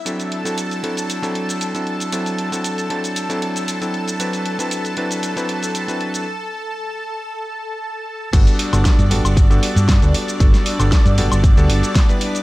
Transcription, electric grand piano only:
\new Staff \with { instrumentName = "Electric grand piano" } { \time 4/4 \key g \major \tempo 4 = 116 <fis c' d' e' a'>8. <fis c' d' e' a'>8. <fis c' d' e' a'>8. <fis c' d' e' a'>4 <fis c' d' e' a'>8. | <fis c' d' e' a'>8. <fis c' d' e' a'>8. <fis c' d' e' a'>8. <fis c' d' e' a'>4 <fis c' d' e' a'>8. | <fis c' d' e' b'>8. <fis c' d' e' b'>8. <fis c' d' e' b'>8. <fis c' d' e' b'>4 <fis c' d' e' b'>8. | r1 |
<g b d' fis' a'>8. <g b d' fis' a'>8. <g b d' fis' a'>8. <g b d' fis' a'>4 <g b d' fis' a'>8. | <g b d' fis' a'>8. <g b d' fis' a'>8. <g b d' fis' a'>8. <g b d' fis' a'>4 <g b d' e' b'>8. | }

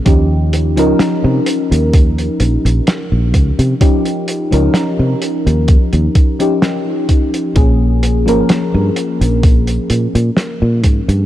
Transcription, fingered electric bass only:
\new Staff \with { instrumentName = "Fingered electric bass" } { \clef bass \time 4/4 \key ees \mixolydian \tempo 4 = 64 ees,8. des,16 r16 c16 r16 ees,8 r16 bes,,16 bes,,16 r16 bes,,16 des,16 c16 | r8. des,16 r16 c16 r16 ees,16 r16 ees,16 r4. | bes,,8. aes,,16 r16 g,16 r16 bes,,8 r16 bes,16 bes,16 r16 bes,16 aes,16 g,16 | }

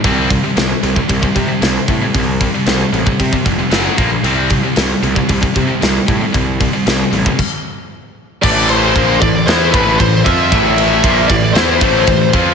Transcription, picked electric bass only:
\new Staff \with { instrumentName = "Picked electric bass" } { \clef bass \time 4/4 \key a \minor \tempo 4 = 114 c,4 c,8 c,8 c,8 c8 c,8 a,8 | c,4 c,8 a,,8 c8 f,,8 fis,,8 bes,,8 | c,4 c,8 c,8 c,8 c8 c,8 a,8 | c,4 c,8 a,,8 r2 |
a,,4 bes,,8 a,,8 e,8 a,,8 a,,8 f,8 | a,,4 bes,,8 a,,8 e,8 a,,8 a,,8 f,8 | }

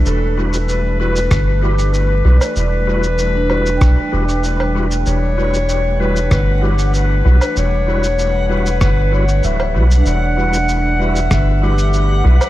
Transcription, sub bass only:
\new Staff \with { instrumentName = "Sub bass" } { \clef bass \time 4/4 \key e \dorian \tempo 4 = 96 e,,2 g,,4. b,,8 | e,,2 b,,8 e,,4. | e,,2 g,,4. b,,8 | e,,2 g,,4 d,,8 b,,8 |
e,,2 g,,4. b,,8 | }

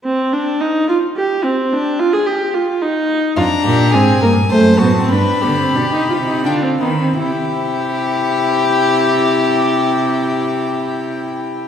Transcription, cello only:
\new Staff \with { instrumentName = "Cello" } { \clef bass \time 3/4 \key g \phrygian \tempo 4 = 97 r2. | r2. | f,8 bes,8 aes,8 g,8 fis,8 a,8 | g,8 d8 b,8 c8 d8 ees8 |
c2.~ | c2. | }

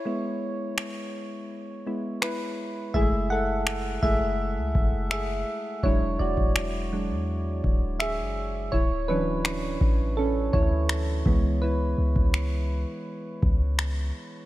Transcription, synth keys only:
\new Staff \with { instrumentName = "Synth keys" } { \time 4/4 \key cis \phrygian \tempo 4 = 83 << { <e' cis''>4 r2 <e' b'>4 | <gis' e''>8 <a' fis''>4 <gis' e''>4. <gis' e''>4 | <e' cis''>8 <fis' d''>2 r8 <gis' e''>4 | <e' cis''>8 <d' b'>4. <cis' a'>8 <e' cis''>4. |
<e' b'>2. r4 | } \\ { <gis b e'>4. r4 <gis b e'>8 r4 | <gis a e'>8 r4 <gis a e'>8 r2 | <fis gis d'>8 r4 <fis gis d'>8 r2 | r8 <e fis cis'>4. r4. <e gis b>8~ |
<e gis b>2.~ <e gis b>8 r8 | } >> }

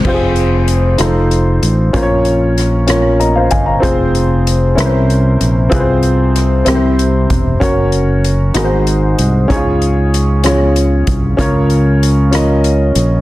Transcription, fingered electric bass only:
\new Staff \with { instrumentName = "Fingered electric bass" } { \clef bass \time 6/8 \key f \minor \tempo 4. = 64 f,,4. f,,4 a,,8 | r2 r8 g,,8 | f,,4. c,4 bes,,8 | c,4. c,4 e,,8 |
ges,,4. aes,,4 c,8 | des,2~ des,8 c,8 | des,2~ des,8 bes,,8 | }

